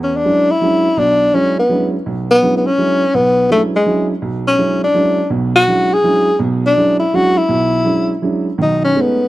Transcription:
0.00 0.20 E2 medium
0.04 0.18 C#4 medium
0.17 0.53 D4 medium
0.25 0.49 F#3 soft
0.25 0.49 G#3 soft
0.25 0.49 C#4 soft
0.25 0.49 D4 soft
0.25 0.49 E4 medium
0.51 1.00 E4 medium
0.61 0.85 F#3 medium
0.61 0.85 G#3 soft
0.61 0.86 C#4 soft
0.61 0.86 D4 soft
0.61 0.86 E4 medium
0.97 1.28 B1 medium
0.97 1.28 B2 medium
0.97 1.36 D4 loud
1.34 1.58 F#3 medium
1.34 1.58 G#3 soft
1.34 1.58 C#4 soft
1.34 1.57 C#4 medium
1.34 1.58 D4 soft
1.34 1.58 E4 medium
1.59 1.91 B3 medium
1.69 1.93 F#3 soft
1.69 1.93 G#3 soft
1.69 1.93 C#4 soft
1.69 1.93 D4 soft
1.69 1.94 E4 medium
2.06 2.37 B1 medium
2.31 2.55 B3 loud
2.42 2.66 F#3 medium
2.42 2.66 G#3 soft
2.42 2.66 C#4 soft
2.42 2.66 D4 soft
2.42 2.66 E4 medium
2.57 2.68 B3 medium
2.66 3.17 C#4 loud
2.78 3.02 F#3 soft
2.78 3.02 G#3 soft
2.78 3.02 C#4 soft
2.78 3.02 D4 soft
2.78 3.03 E4 medium
3.14 3.45 B1 medium
3.14 3.50 B3 loud
3.50 3.74 F#3 soft
3.50 3.74 G#3 soft
3.50 3.62 A3 medium
3.50 3.74 C#4 soft
3.50 3.75 D4 soft
3.50 3.74 E4 medium
3.76 4.08 G#3 medium
3.86 4.10 F#3 medium
3.86 4.10 G#3 soft
3.86 4.10 C#4 soft
3.86 4.11 D4 soft
3.86 4.11 E4 medium
4.22 4.53 B1 medium
4.48 4.80 C#4 medium
4.58 4.83 F#3 medium
4.58 4.83 G#3 soft
4.58 4.83 C#4 soft
4.58 4.83 D4 soft
4.58 4.83 E4 medium
4.84 5.29 D4 medium
4.94 5.19 F#3 medium
4.94 5.19 G#3 soft
4.94 5.19 C#4 soft
4.94 5.19 D4 soft
4.94 5.19 E4 medium
5.30 5.62 B1 medium
5.30 5.62 B2 medium
5.56 5.95 F#4 loud
5.68 5.92 F#3 medium
5.68 5.92 G#3 soft
5.68 5.92 C#4 soft
5.68 5.92 D4 soft
5.68 5.92 E4 medium
5.93 6.41 G#4 loud
6.04 6.28 F#3 medium
6.04 6.28 G#3 soft
6.04 6.28 C#4 soft
6.04 6.28 D4 soft
6.04 6.28 E4 medium
6.39 6.71 B1 medium
6.39 6.71 B2 medium
6.67 6.99 D4 medium
6.77 7.01 F#3 medium
6.77 7.01 G#3 soft
6.77 7.01 C#4 soft
6.77 7.01 D4 soft
6.77 7.01 E4 medium
7.00 7.17 E4 medium
7.13 7.37 F#3 medium
7.13 7.37 G#3 soft
7.13 7.37 C#4 soft
7.13 7.38 D4 medium
7.13 7.37 E4 medium
7.13 7.39 F#4 medium
7.38 8.23 E4 medium
7.49 7.80 B1 medium
7.49 7.80 B2 medium
7.84 8.09 F#3 soft
7.84 8.09 G#3 soft
7.84 8.10 C#4 soft
7.84 8.09 D4 soft
7.84 8.10 E4 medium
8.22 8.46 F#3 medium
8.22 8.46 G#3 soft
8.22 8.47 C#4 soft
8.22 8.47 D4 medium
8.22 8.46 E4 medium
8.58 8.89 B1 medium
8.58 8.90 D#3 medium
8.63 8.82 D#4 medium
8.85 9.03 C#4 medium
8.95 9.19 G#3 soft
8.95 9.19 A3 soft
8.95 9.19 B3 soft
8.95 9.20 C#4 soft
8.95 9.20 D#4 medium
9.01 9.28 B3 medium

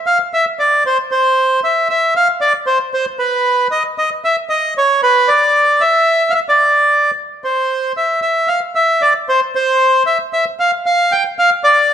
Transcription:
0.06 0.18 F5 medium
0.34 0.45 E5 medium
0.59 0.84 D5 medium
0.86 0.98 C5 medium
1.11 1.60 C5 medium
1.64 1.88 E5 medium
1.90 2.14 E5 medium
2.16 2.28 F5 medium
2.41 2.53 D5 medium
2.67 2.78 C5 medium
2.94 3.05 C5 medium
3.19 3.67 B4 medium
3.71 3.83 D#5 medium
3.98 4.10 D#5 medium
4.25 4.36 E5 medium
4.49 4.74 D#5 medium
4.78 5.01 C#5 medium
5.03 5.29 B4 medium
5.28 5.82 D5 medium
5.81 6.32 E5 medium
6.30 6.40 E5 medium
6.30 6.34 F5 medium
6.49 7.11 D5 medium
7.44 7.92 C5 medium
7.97 8.20 E5 medium
8.22 8.49 E5 medium
8.48 8.60 F5 medium
8.75 9.02 E5 medium
9.02 9.13 D5 medium
9.29 9.40 C5 medium
9.55 10.03 C5 medium
10.06 10.18 E5 medium
10.33 10.45 E5 medium
10.60 10.71 F5 medium
10.86 11.13 F5 medium
11.12 11.24 G5 medium
11.39 11.50 F5 medium
11.64 11.94 D5 medium

